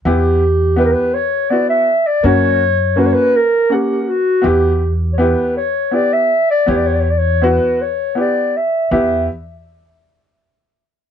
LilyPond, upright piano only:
\new Staff \with { instrumentName = "Upright piano" } { \time 3/4 \tempo 4 = 81 <b e' g'>8 r8 <b e' g'>8 r8 <b e' fis'>8 r8 | <ais cis' fis'>8 r8 <ais cis' fis'>8 r8 <ais cis' fis''>8 r8 | <b e' g'>8 r8 <b e' g'>8 r8 <b e' g'>8 r8 | <b e' g'>8 r8 <b e' fis'>8 r8 <b e' g'>8 r8 |
<b e' g'>8 r2 r8 | }